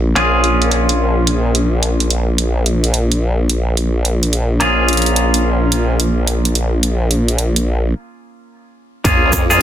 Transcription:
Already playing: wobble bass A#1, clean electric guitar A#3 C#4 F4 G#4
0.15 wobble bass A#1, clean electric guitar A#3 C#4 F4 G#4, closed hi-hat
0.44 closed hi-hat
0.62 closed hi-hat
0.71 closed hi-hat
0.89 closed hi-hat
1.27 closed hi-hat
1.55 closed hi-hat
1.83 closed hi-hat
2.00 closed hi-hat
2.10 closed hi-hat
2.38 closed hi-hat
2.66 closed hi-hat
2.84 closed hi-hat
2.94 closed hi-hat
3.12 closed hi-hat
3.50 closed hi-hat
3.77 closed hi-hat
4.05 closed hi-hat
4.23 closed hi-hat
4.33 closed hi-hat
4.60 clean electric guitar A#3 C#4 F4 G#4, closed hi-hat
4.89 closed hi-hat
4.93 closed hi-hat
4.97 closed hi-hat
5.02 closed hi-hat
5.06 closed hi-hat
5.16 closed hi-hat
5.34 closed hi-hat
5.72 closed hi-hat
6.00 closed hi-hat
6.27 closed hi-hat
6.45 closed hi-hat
6.55 closed hi-hat
6.83 closed hi-hat
7.11 closed hi-hat
7.28 closed hi-hat
7.38 closed hi-hat
7.56 closed hi-hat
9.04 wobble bass A#1, clean electric guitar A#3 C#4 F4 G#4, kick, closed hi-hat, sub drop, shaker
9.33 wobble bass F2, kick, cross-stick, closed hi-hat, shaker
9.50 clean electric guitar A#3 C#4 F4 G#4, shaker

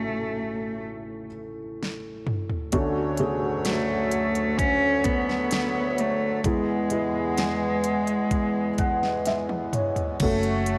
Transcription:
Already playing: felt piano A1 A2 A3 C#4 F#4 A4, cello A3
1.83 snare
2.27 mid tom
2.50 floor tom
2.72 felt piano D2 D3 A3 C#4 D4 F#4, harmonium D2 D3 F#3 C#5, kick, closed hi-hat
3.17 felt piano A3 C#4 F#4 G#4, closed hi-hat
3.65 cello A3, snare, closed hi-hat
4.11 closed hi-hat
4.35 closed hi-hat
4.58 cello C#4, kick, closed hi-hat
5.04 cello B3, kick, closed hi-hat
5.29 snare
5.51 snare, closed hi-hat
5.98 cello A3, closed hi-hat
6.44 felt piano E2 E3 G#3 B3 E4 G#4, harmonium E2 E3 G#3 B3, cello G#3, kick, closed hi-hat
6.90 felt piano G#3 B3 E4 B4, closed hi-hat
7.38 snare, closed hi-hat
7.84 closed hi-hat
8.07 closed hi-hat
8.31 kick, closed hi-hat
8.78 felt piano F#5, kick, closed hi-hat
9.03 snare
9.26 felt piano E5, snare, closed hi-hat
9.49 high tom
9.73 felt piano C#5, closed hi-hat, mid tom
9.96 closed hi-hat, floor tom
10.20 fingered electric bass F#1, harmonium A3 F#4 C#5 F#5, cello A3, felt piano A3 C#4 F#4 A4, kick, closed hi-hat, crash
10.43 closed hi-hat
10.66 closed hi-hat

